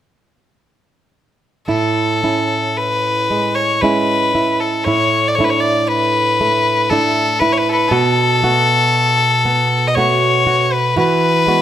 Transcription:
1.68 nylon-string guitar A2 E4, fiddle A4
2.24 nylon-string guitar C#4 E4
2.77 fiddle B4
3.30 nylon-string guitar G#3
3.55 fiddle C#5
3.81 nylon-string guitar G#3 C#4 E4, fiddle B4
4.35 nylon-string guitar E4
4.60 fiddle A4
4.84 nylon-string guitar A2 E4, fiddle C#5
5.28 fiddle D5
5.35 nylon-string guitar A3, fiddle C#5
5.39 nylon-string guitar D4 E4
5.44 fiddle B4
5.50 fiddle C#5
5.60 fiddle D5
5.88 fiddle B4
6.41 nylon-string guitar A3
6.90 nylon-string guitar A3 D4 E4, fiddle A4
7.39 nylon-string guitar E4, fiddle B4
7.52 fiddle C#5
7.58 fiddle B4
7.69 fiddle A4 B4
7.89 nylon-string guitar B2 F#4, fiddle A4
8.42 nylon-string guitar A3 B3 F#4
9.45 nylon-string guitar B3
9.87 fiddle D#5
9.95 nylon-string guitar A3 B3 F#4, fiddle C#5
10.47 nylon-string guitar F#4
10.73 fiddle B4
10.96 nylon-string guitar E3 F#4, fiddle B4
11.47 nylon-string guitar G#3 B3 F#4

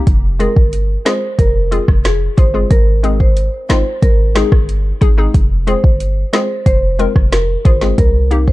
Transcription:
0.07 808-style bass F1, kick, closed hi-hat
0.39 synth pluck G#3 C4 F4 G#4, marimba A#4, closed hi-hat
0.56 808-style bass G1, kick
0.73 closed hi-hat
1.05 synth pluck G#3 C4 F4 G#4, marimba C5, cross-stick, snare, closed hi-hat
1.39 808-style bass F1, marimba A#4, kick, closed hi-hat
1.71 synth pluck G#3 C4 F4 G#4, closed hi-hat
1.88 808-style bass F1, kick, cross-stick
2.05 marimba G#4, cross-stick, snare, closed hi-hat
2.37 808-style bass G1, synth pluck F4 G#4, marimba C5, kick, closed hi-hat
2.54 synth pluck G#3 C4 F4 G#4
2.70 808-style bass G#1, marimba A#4, kick, closed hi-hat
3.03 synth pluck G#3 C4 D#4 G#4, closed hi-hat
3.20 marimba C5, kick
3.37 closed hi-hat
3.69 808-style bass G#1, synth pluck G#3 C4 D#4 F4, marimba C5, cross-stick, snare, closed hi-hat
4.02 808-style bass G#1, marimba A#4, kick, closed hi-hat
4.35 synth pluck G#3 C4 D#4 G#4, marimba G#4, cross-stick, snare, closed hi-hat
4.52 808-style bass G1, kick, cross-stick
4.69 closed hi-hat
5.01 808-style bass G#1, synth pluck D#4 G#4, kick, closed hi-hat
5.18 synth pluck G#3 C4 D#4 G#4
5.34 808-style bass F1, kick, closed hi-hat
5.67 synth pluck G#3 C4 F4 G#4, marimba C5, closed hi-hat
5.84 808-style bass G1, kick
6.00 closed hi-hat
6.33 synth pluck G#3 C4 F4 G#4, marimba C5, cross-stick, snare, closed hi-hat
6.66 808-style bass F1, marimba C5, kick, closed hi-hat
6.99 synth pluck G#3 C4 F4 A#4, closed hi-hat
7.16 808-style bass F1, kick, cross-stick
7.32 marimba A#4, cross-stick, snare, closed hi-hat
7.65 808-style bass G1, synth pluck F4 G#4, marimba C5, kick, closed hi-hat
7.81 synth pluck G#3 C4 F4 G#4, snare
7.98 808-style bass C2, marimba A#4, kick, closed hi-hat
8.31 synth pluck A#3 C4 D#4 G4, closed hi-hat
8.48 marimba C5, kick

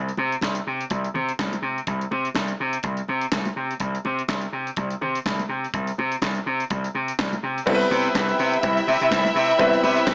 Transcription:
Already playing: slap bass C2
0.08 closed hi-hat
0.17 slap bass C3, muted conga
0.32 closed hi-hat
0.41 slap bass C2, kick, snare, clap, high conga
0.55 closed hi-hat
0.67 slap bass C3
0.80 closed hi-hat
0.90 slap bass C2, kick, closed hi-hat, muted conga
1.04 closed hi-hat
1.14 slap bass C3, muted conga, low conga
1.28 closed hi-hat
1.39 slap bass C2, kick, snare, clap, high conga
1.52 closed hi-hat, high conga
1.62 slap bass C3
1.78 closed hi-hat
1.87 slap bass C2, kick, closed hi-hat
2.01 closed hi-hat
2.11 slap bass C3, muted conga
2.25 closed hi-hat
2.35 slap bass C2, kick, snare, clap, high conga
2.48 closed hi-hat
2.60 slap bass C3
2.73 closed hi-hat
2.83 slap bass C2, kick, closed hi-hat, muted conga
2.97 closed hi-hat
3.08 slap bass C3, muted conga
3.21 closed hi-hat
3.32 slap bass C2, kick, snare, clap, high conga
3.45 closed hi-hat, high conga
3.56 slap bass C3
3.70 closed hi-hat
3.79 slap bass C2, kick, closed hi-hat
3.95 closed hi-hat
4.05 slap bass C3, muted conga
4.18 closed hi-hat
4.28 slap bass C2, kick, snare, clap, high conga
4.41 closed hi-hat
4.53 slap bass C3
4.67 closed hi-hat
4.76 slap bass C2, kick, closed hi-hat, muted conga
4.90 closed hi-hat
5.01 slap bass C3, low conga
5.15 closed hi-hat
5.26 slap bass C2, kick, snare, clap, high conga
5.39 closed hi-hat, high conga
5.49 slap bass C3
5.64 closed hi-hat
5.74 slap bass C2, kick, closed hi-hat
5.87 closed hi-hat
5.98 slap bass C3, muted conga
6.11 closed hi-hat
6.22 slap bass C2, kick, snare, clap, high conga
6.34 closed hi-hat
6.46 slap bass C3
6.60 closed hi-hat
6.70 slap bass C2, kick, closed hi-hat, muted conga
6.84 closed hi-hat
6.95 slap bass C3, muted conga
7.08 closed hi-hat
7.19 slap bass C2, kick, snare, clap, high conga
7.33 closed hi-hat, high conga
7.43 slap bass C3
7.58 closed hi-hat
7.66 slap bass C2, grand piano G3 B3 C4 E4 A4, string section E4 E5 G5 B5 E6, kick, crash, cowbell
7.75 grand piano B4
7.81 closed hi-hat
7.91 slap bass C3, open hi-hat, muted conga
8.05 closed hi-hat
8.15 slap bass C2, kick, snare, clap, cowbell, high conga
8.28 closed hi-hat
8.39 slap bass C3, open hi-hat
8.53 closed hi-hat
8.63 slap bass C2, kick, closed hi-hat, cowbell, muted conga
8.77 closed hi-hat
8.87 slap bass C3, open hi-hat, muted conga
9.01 slap bass C3, closed hi-hat
9.11 slap bass C2, kick, snare, clap, cowbell, high conga
9.25 closed hi-hat, high conga
9.35 slap bass C3, open hi-hat
9.51 closed hi-hat
9.58 slap bass C2, grand piano G3 B3 C4 E4 B4, kick, closed hi-hat, cowbell
9.73 closed hi-hat
9.83 slap bass C3, open hi-hat, muted conga
9.96 closed hi-hat
10.07 slap bass C2, kick, snare, clap, cowbell, high conga

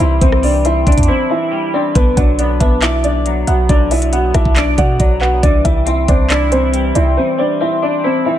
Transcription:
Already playing: clean electric guitar E3 G3 D4 E4
0.00 808-style bass C2, clean electric guitar C4, grand piano E4 E5
0.21 808-style bass C2, clean electric guitar E3, grand piano C4 C5, kick, closed hi-hat
0.32 cross-stick
0.43 clean electric guitar G3, grand piano D4 D5, open hi-hat
0.65 clean electric guitar C4, grand piano E4 E5, closed hi-hat
0.87 808-style bass C2, clean electric guitar D4, grand piano D4 D5, kick, closed hi-hat
0.92 closed hi-hat
0.98 808-style bass E2, kick, closed hi-hat
1.03 closed hi-hat
1.08 grand piano C4 C5, clean electric guitar E4
1.30 clean electric guitar E3, grand piano E4 E5
1.51 clean electric guitar G3
1.74 clean electric guitar C4, grand piano D4 D5
1.95 808-style bass B1, clean electric guitar D3, grand piano B3 B4, kick, closed hi-hat
2.17 808-style bass B1, clean electric guitar F#3, grand piano D4 D5, synth pluck F#5, kick, closed hi-hat
2.39 clean electric guitar B3, grand piano D4 D5, closed hi-hat
2.60 808-style bass B1, grand piano B3 B4, clean electric guitar D4, synth pluck E5, kick, closed hi-hat
2.82 grand piano E4 E5, clean electric guitar D5, clap, closed hi-hat
3.04 clean electric guitar D3, grand piano D4 D5, synth pluck D5, closed hi-hat
3.26 clean electric guitar F#3, closed hi-hat
3.47 808-style bass B1, clean electric guitar B3, grand piano F#4 F#5, synth pluck E5, closed hi-hat
3.69 808-style bass B1, clean electric guitar D3, grand piano D4 D5, kick, closed hi-hat
3.91 clean electric guitar F#3, grand piano E4 E5, synth pluck D5, closed hi-hat, open hi-hat
4.02 closed hi-hat
4.13 clean electric guitar B3, grand piano F#4 F#5, closed hi-hat
4.34 808-style bass A1, clean electric guitar D4, grand piano E4 E5, synth pluck E5, kick, cross-stick, closed hi-hat
4.45 808-style bass B1, kick
4.56 grand piano D4 D5, clean electric guitar D5, clap, closed hi-hat
4.78 808-style bass B2, clean electric guitar D3, grand piano F#4 F#5, synth pluck D5, kick, closed hi-hat
4.99 808-style bass B1, clean electric guitar F#3, synth pluck D5, kick, closed hi-hat
5.21 clean electric guitar B3, grand piano F#4 F#5, synth pluck B4, clap
5.43 808-style bass C2, clean electric guitar E3, grand piano D4 D5, kick, closed hi-hat
5.65 808-style bass C2, clean electric guitar G3, grand piano E4 E5, synth pluck E5, kick, closed hi-hat
5.86 clean electric guitar C4, grand piano E4 E5, closed hi-hat
6.08 808-style bass C2, grand piano C4 C5, clean electric guitar D4, synth pluck D5, kick, closed hi-hat
6.30 grand piano D4 D5, clean electric guitar E4, clap, closed hi-hat
6.52 clean electric guitar E3, grand piano C4 C5, synth pluck C5, closed hi-hat
6.73 clean electric guitar G3, closed hi-hat
6.95 808-style bass C2, clean electric guitar C4, grand piano E4 E5, synth pluck D5, closed hi-hat
7.17 clean electric guitar E3, grand piano C4 C5
7.38 clean electric guitar G3, grand piano D4 D5, synth pluck C5
7.61 clean electric guitar C4, grand piano E4 E5
7.82 clean electric guitar D4, grand piano D4 D5, synth pluck D5
8.04 grand piano C4 C5, clean electric guitar E4
8.25 clean electric guitar E3, grand piano E4 E5

